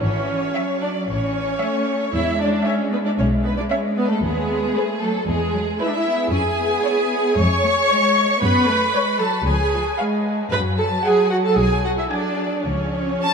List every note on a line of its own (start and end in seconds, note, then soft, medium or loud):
0.01 0.43 G#1 medium
0.01 0.53 E3 medium
0.01 0.79 C#4 medium
0.01 0.80 C#5 medium
0.54 1.06 F#3 soft
0.54 0.94 E5 medium
0.81 0.89 D4 medium
0.81 1.08 D5 medium
1.07 1.50 A1 medium
1.07 1.60 E3 medium
1.07 2.11 C#4 medium
1.07 2.12 C#5 medium
1.60 2.12 A3 medium
1.60 2.00 E5 medium
2.13 2.55 E2 medium
2.13 3.67 G#3 medium
2.13 2.39 E4 medium
2.13 2.40 E5 medium
2.40 2.65 D4 medium
2.40 2.48 D5 medium
2.66 2.92 C#4 medium
2.66 2.74 C#5 medium
2.66 3.05 E5 medium
2.92 2.97 B3 medium
2.92 2.97 B4 medium
3.05 3.10 D4 medium
3.05 3.11 D5 medium
3.18 3.59 B1 medium
3.18 3.26 C#4 medium
3.18 3.27 C#5 soft
3.44 3.50 B3 medium
3.44 3.57 B4 medium
3.57 3.63 D4 medium
3.57 3.62 D5 medium
3.70 4.21 G#3 medium
3.70 3.79 C#4 medium
3.70 3.78 C#5 medium
3.70 4.10 E5 soft
3.96 4.09 B3 medium
3.96 4.09 B4 medium
4.10 4.15 A3 medium
4.10 4.23 A4 medium
4.22 4.64 D#2 medium
4.22 4.99 G#3 medium
4.22 4.74 B3 medium
4.22 5.00 G#4 medium
4.75 5.01 A3 medium
4.75 5.14 B4 medium
5.01 5.27 F#3 soft
5.01 5.09 A3 medium
5.01 5.27 A4 medium
5.27 5.68 E2 medium
5.27 5.35 E3 soft
5.27 5.78 G#3 medium
5.27 5.78 G#4 medium
5.54 5.62 F#3 medium
5.79 5.87 G#3 medium
5.79 5.86 E4 medium
5.79 6.19 B4 medium
5.79 6.31 E5 medium
5.86 5.93 D4 medium
5.93 6.32 E4 medium
6.05 6.31 B3 medium
6.31 6.73 F2 medium
6.31 6.39 C#4 medium
6.31 7.35 G#4 medium
6.31 7.36 G#5 medium
6.58 7.36 B3 medium
6.85 7.24 C#5 medium
7.37 7.79 F2 medium
7.37 7.45 G#3 medium
7.37 8.42 C#5 medium
7.37 8.40 C#6 medium
7.63 7.71 A3 medium
7.89 8.41 G#3 medium
7.89 8.28 C#5 medium
8.41 8.83 F#2 medium
8.41 8.67 B3 medium
8.41 9.19 B4 loud
8.41 9.19 B5 medium
8.67 8.94 A3 medium
8.93 9.20 G#3 medium
8.93 9.34 C#5 medium
9.20 9.46 F#3 medium
9.20 9.28 A4 medium
9.20 9.47 A5 medium
9.46 9.89 C#2 medium
9.46 9.54 F3 medium
9.46 9.98 G#4 medium
9.46 9.99 G#5 medium
9.73 9.81 F3 medium
9.99 10.51 G#3 medium
9.99 10.39 F5 medium
10.52 10.94 F#2 medium
10.52 12.10 F#3 medium
10.52 10.60 B4 medium
10.52 10.61 B5 medium
10.78 10.86 A4 medium
10.78 11.04 A5 medium
11.05 11.31 G#4 medium
11.05 11.45 F#5 medium
11.05 11.32 G#5 medium
11.31 11.37 F#4 medium
11.31 11.36 F#5 medium
11.45 11.58 A4 medium
11.45 11.58 A5 medium
11.57 12.01 B1 medium
11.57 11.85 G#4 medium
11.57 11.85 G#5 medium
11.84 11.90 F#4 medium
11.84 11.90 F#5 medium
11.98 12.11 E4 medium
11.98 12.04 E5 medium
12.11 12.65 F#3 medium
12.11 12.58 D4 medium
12.11 12.65 D5 medium
12.11 12.52 G#5 soft
12.59 12.66 D4 soft
12.66 13.10 C#2 medium
12.66 13.34 F3 soft
12.66 13.34 C#4 medium
12.66 13.34 C#5 medium
13.23 13.34 A5 medium